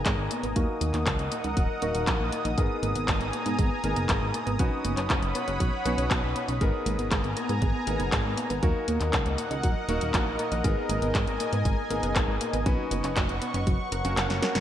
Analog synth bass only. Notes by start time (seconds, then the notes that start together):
0.06 G#1
0.18 G#1
0.43 G#1
0.56 D#2
0.81 D#2
0.94 D#2
1.06 C#2
1.19 C#2
1.44 C#2
1.57 D#1
1.82 D#1
1.95 D#1
2.07 A#1
2.20 A#1
2.45 A#1
2.58 G#1
2.83 G#1
2.95 G#1
3.08 G#1
3.21 G#1
3.46 G#2
3.59 G#1
3.84 G#1
3.96 F#1
4.09 G#1
4.22 G#1
4.47 G#1
4.59 B1
4.85 F#1
4.97 F#1
5.10 F#1
5.22 F#1
5.48 F#1
5.60 B1
5.85 B1
5.98 B1
6.11 B1
6.23 B1
6.48 B1
6.61 G#1
6.86 G#1
6.99 G#1
7.12 G#1
7.24 G#1
7.49 G#2
7.62 G#1
7.87 G#1
8.00 F#1
8.12 G#1
8.25 G#1
8.50 G#1
8.63 D#2
8.88 D#2
9.01 D#2
9.13 C#2
9.26 C#2
9.51 C#2
9.64 D#1
9.89 D#1
10.01 D#1
10.14 A#1
10.26 A#1
10.52 A#1
10.64 G#1
10.89 G#1
11.02 G#1
11.15 G#1
11.27 G#1
11.53 G#2
11.65 G#1
11.90 G#1
12.03 F#1
12.16 G#1
12.28 G#1
12.53 G#1
12.66 B1
12.91 F#1
13.04 F#1
13.17 F#1
13.29 F#1
13.54 F#1
13.67 F#1
13.92 F#1
14.05 F#1
14.17 F#1
14.30 F#1
14.55 F#1